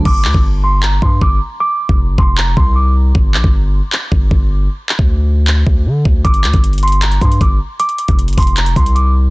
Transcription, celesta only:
X:1
M:4/4
L:1/8
Q:1/4=155
K:Gm
V:1 name="Celesta"
d'2 z c' b c' d' z | d'2 z c' b c' d' z | z8 | z8 |
d'2 z c' b c' d' z | d'2 z c' b c' d' z |]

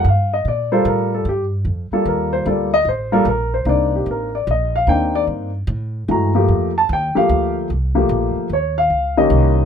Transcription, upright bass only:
X:1
M:3/4
L:1/8
Q:"Swing" 1/4=149
K:Gm
V:1 name="Upright bass" clef=bass
G,,2 B,,2 A,,2 | G,,2 F,, z E,,2 | D,,2 A,,,2 B,,,2 | C,,2 A,,,2 B,,,2 |
E,,2 G,,2 A,,2 | G,,2 F,,2 E,, z | D,,2 C,,2 B,,, z | E,,2 _D,,2 C,,2 |]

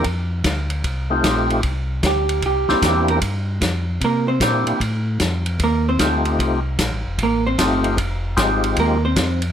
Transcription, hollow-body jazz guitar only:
X:1
M:4/4
L:1/8
Q:"Swing" 1/4=151
K:F
V:1 name="Hollow-body jazz guitar"
z8 | z2 G2 G2 G B | z4 [B,B] [Cc]2 z | z4 [B,B] [Cc]2 z |
z4 [B,B] [Cc]2 z | z4 [B,B] [Cc]2 z |]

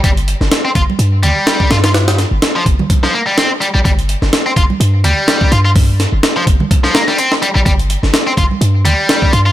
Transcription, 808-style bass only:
X:1
M:4/4
L:1/16
Q:"Swing 16ths" 1/4=126
K:Gm
V:1 name="808-style bass" clef=bass
G,,,3 G,,, z2 G,,, z G,,2 D,, z3 G,,2- | G,,3 G,,, z2 G,,, z8 B,,, | G,,,3 G,,, z2 G,,, z G,,2 D,, z3 G,,2- | G,,3 G,,, z2 G,,, z8 B,,, |
G,,,3 G,,, z2 G,,, z G,,2 D,, z3 G,,2 |]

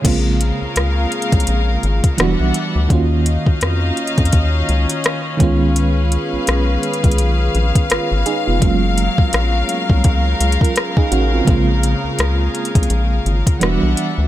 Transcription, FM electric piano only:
X:1
M:4/4
L:1/16
Q:"Swing 16ths" 1/4=84
K:Bbm
V:1 name="FM electric piano"
z16 | z16 | z12 [F_c]2 [EA] [_CF]- | [_CF] z8 z2 [FB]2 [EA] [DG] [=CF]- |
[CF] z12 z3 |]
V:2 name="FM electric piano"
[D,A,B,CF]12 [=E,^F,=G,=B,=D^F]4 | [E,B,DFG]12- [E,B,DFG]2 [E,A,_CDF]2- | [E,A,_CDF]12- [E,A,CDF]2 z2 | [G,A,B,DF]16 |
[D,A,B,CF]12 [=E,=G,=B,=D^F]4 |]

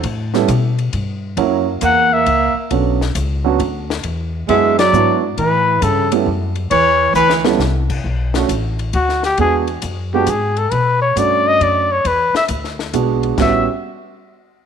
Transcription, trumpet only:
X:1
M:3/4
L:1/8
Q:"Swing" 1/4=135
K:Bm
V:1 name="Trumpet"
z6 | z2 f e2 z | z6 | z2 e d2 z |
B2 A z3 | c2 B z3 | z4 F G | ^G z2 =G ^G A |
B c d ^d =d c | B e z4 | e z4 z |]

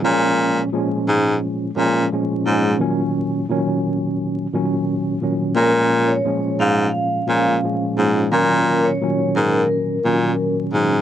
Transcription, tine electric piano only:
X:1
M:4/4
L:1/8
Q:"Swing 16ths" 1/4=87
K:Bbm
V:1 name="Tine electric piano" clef=bass
[B,,F,A,D]2 [B,,F,A,D]3 [B,,F,A,D] [B,,F,A,D] [B,,F,A,D] | [B,,E,G,D]2 [B,,E,G,D]3 [B,,E,G,D]2 [B,,E,G,D] | [B,,F,A,D]2 [B,,F,A,D]3 [B,,F,A,D] [B,,F,A,D] [B,,F,A,D] | [B,,E,G,D]2 [B,,E,G,D]3 [B,,E,G,D]2 [B,,E,G,D] |]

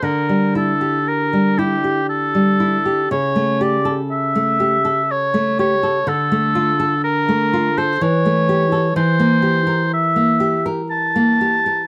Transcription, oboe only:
X:1
M:3/4
L:1/16
Q:1/4=60
K:Aphr
V:1 name="Oboe"
B2 A2 B2 G2 A4 | ^c2 d z e4 c2 c2 | A4 B3 c ^c4 | [K:Cmix] c4 e3 z a4 |]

